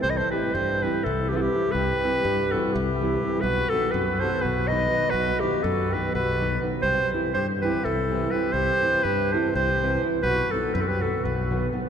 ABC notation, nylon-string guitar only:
X:1
M:7/8
L:1/8
Q:1/4=124
K:none
V:1 name="Nylon-string guitar"
z [E,G,CE] z [E,G,CE] z [E,G,CE] [E,G,CE] | z [E,G,CE] z [E,G,CE] z [E,G,CE] [E,G,CE] | z [^D,^F,B,^D] z [D,F,B,D] z [D,F,B,D] [D,F,B,D] | z [^D,^F,B,^D] z [D,F,B,D] z [D,F,B,D] [D,F,B,D] |
z [E,G,CE] z [E,G,CE] z [E,G,CE] [E,G,CE] | z [E,G,CE] z [E,G,CE] z [E,G,CE] [E,G,CE] | z [^D,^F,B,^D] z [D,F,B,D] z [D,F,B,D] [D,F,B,D] |]